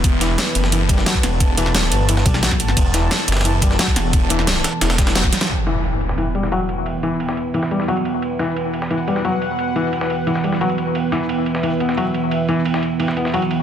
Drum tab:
RD |x---x---x---x---x---x---x---x---|x---x---x---x---x---x---x-x-x---|x---x---x---xxxxx---x---x---x---|x-------x---x---x-x-x-x-x---x-x-|
HH |x---x---x---x---x---x---x---x---|x---x---x---x---x---x---x---x---|x---x---x---x---x---x---x---x---|x---x---x---x---x---x---x---x---|
SD |----o---o-----o-------o-o---o---|------o-o-o-------o---o-o-o---o-|----o---o----ooo------o-o---o---|------o-o-o-o---o-o-o-o-o-o-o-o-|
BD |o-------------------o-----o-----|o-------------------o-----o-----|o-------------------o-----o-----|o-------------------o-----o-----|

RD |x---x---x---x---x---x---x---x---|x---x---x---x---x---x---x-x-x---|x---x---x---x---x---x---x---x---|x---x---x---x---x---x---x-x-x---|
HH |--------------------------------|--------------------------------|--------------------------------|--------------------------------|
SD |----o---------o-------o---------|----------o-------o---o---------|----o---------o-------o---------|----------o-------o---o---------|
BD |--------------------------------|--------------------------------|--------------------------------|--------------------------------|

RD |x---x---x---x---x---x---x---x---|x---x---x---x---x---x---x-x-x---|
HH |--------------------------------|--------------------------------|
SD |----o---------o-------o---------|----------o-------o---o---------|
BD |--------------------------------|--------------------------------|